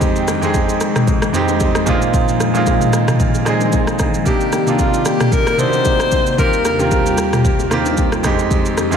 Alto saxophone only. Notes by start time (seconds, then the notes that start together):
4.27 G4
4.80 F4
5.06 G4
5.33 A#4
5.59 C5
6.39 A#4
6.66 A#4
6.80 G4